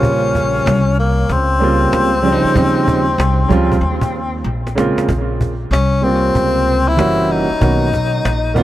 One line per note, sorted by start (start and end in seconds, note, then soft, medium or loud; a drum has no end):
0.00 0.63 A#1 loud
0.00 0.74 C#3 medium
0.00 0.74 G3 medium
0.00 0.75 A#3 medium
0.00 0.99 C#4 medium
0.00 0.76 F4 medium
0.00 0.75 C5 medium
0.00 cajon bass loud
0.35 cajon bass medium
0.66 1.26 C2 loud
0.66 cajon slap loud
0.86 cajon slap soft
0.97 1.34 A#3 medium
0.97 cajon slap soft
1.29 1.90 C#2 loud
1.29 4.47 C4 medium
1.29 cajon bass loud
1.29 cajon slap medium
1.59 2.08 C#3 medium
1.59 2.09 G3 medium
1.59 2.09 A#3 medium
1.59 2.10 C4 medium
1.63 2.10 F4 medium
1.92 2.42 C#2 medium
1.92 cajon slap medium
2.22 2.52 C#3 medium
2.22 2.53 F3 medium
2.22 2.54 G3 medium
2.22 2.55 C4 medium
2.22 2.33 D4 medium
2.32 2.56 D#4 loud
2.44 muted upright bass stroke soft
2.54 3.16 D#2 loud
2.54 3.03 C#3 medium
2.54 3.03 F3 medium
2.54 3.04 G3 medium
2.54 3.04 C4 medium
2.54 cajon bass loud
2.58 3.05 D#4 loud
2.88 cajon bass medium
3.18 3.49 C2 loud
3.18 cajon slap loud
3.39 cajon slap soft
3.49 3.81 C#2 loud
3.49 3.74 C#3 medium
3.49 3.75 F3 medium
3.49 3.75 G3 medium
3.49 3.76 C4 medium
3.49 3.76 F4 medium
3.49 cajon bass medium
3.72 cajon bass medium
3.81 4.42 D#2 loud
4.01 cajon bass loud
4.15 cajon slap soft
4.44 4.94 A#1 loud
4.44 cajon slap soft
4.67 cajon slap medium
4.75 5.08 C#3 medium
4.75 5.08 G#3 medium
4.75 5.09 A#3 medium
4.75 5.09 C4 medium
4.75 5.10 F4 medium
4.75 cajon slap loud
4.96 muted upright bass stroke soft
4.96 cajon slap medium
5.09 5.69 A#1 loud
5.09 cajon bass loud
5.41 cajon bass medium
5.71 6.31 C2 medium
5.71 6.05 C#4 medium
5.71 cajon slap loud
5.93 cajon slap soft
6.02 6.93 C3 medium
6.02 6.93 G3 medium
6.02 6.94 A#3 medium
6.02 6.89 C4 loud
6.02 6.94 C4 medium
6.02 cajon slap soft
6.06 6.95 F4 medium
6.35 6.95 C#2 medium
6.35 cajon bass medium
6.35 cajon slap medium
6.88 7.33 E4 loud
6.96 7.47 F#1 medium
6.96 7.45 E3 medium
6.96 7.45 G3 medium
6.96 7.46 A#3 medium
6.96 7.47 C#4 medium
6.96 7.47 F#4 medium
6.96 cajon slap loud
7.30 8.63 D#4 medium
7.30 cajon slap soft
7.50 muted upright bass stroke soft
7.60 8.21 B1 loud
7.60 7.85 D#3 medium
7.60 7.86 A#3 medium
7.60 7.86 B3 medium
7.60 7.87 C#4 medium
7.60 7.87 F#4 medium
7.60 cajon bass loud
7.93 cajon bass medium
8.25 8.63 A#1 loud
8.25 cajon slap loud
8.45 cajon slap soft
8.54 8.63 D#3 medium
8.54 8.63 A#3 medium
8.54 8.63 B3 medium
8.54 8.63 C#4 medium
8.54 8.63 F4 medium
8.54 cajon bass medium